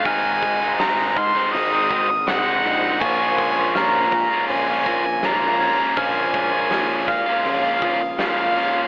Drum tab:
CC |--------|x-------|--------|
HH |oooooooo|-ooooooo|oooooooo|
SD |--o---o-|--o---o-|--o---o-|
BD |oo-o-o--|oo-o-o--|oo-o-o--|